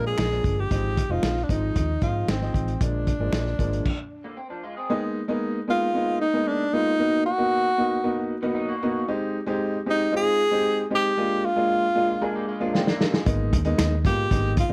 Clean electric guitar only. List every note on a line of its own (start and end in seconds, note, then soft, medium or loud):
0.00 0.54 D3 medium
0.00 0.54 A#3 medium
4.24 4.37 D3 medium
4.24 4.37 A#3 medium
4.37 4.49 C4 medium
4.50 4.63 F3 medium
4.50 4.63 D4 medium
4.63 4.76 G#3 medium
4.63 4.76 F4 medium
4.77 5.02 C4 medium
4.77 5.02 G#4 medium
8.42 8.55 D#3 medium
8.42 8.54 B3 medium
8.55 8.68 F#3 medium
8.55 8.68 D#4 medium
8.68 9.06 A#3 medium
8.68 9.06 F#4 medium
12.22 12.35 D4 medium
12.22 12.34 A#4 medium
12.35 12.47 A#3 medium
12.35 12.47 G4 medium
12.48 12.60 G#3 medium
12.48 12.60 F4 medium
12.61 12.73 F3 medium
12.61 12.73 D4 medium
12.75 12.87 C4 medium
12.87 13.25 D3 medium
12.87 13.25 A#3 medium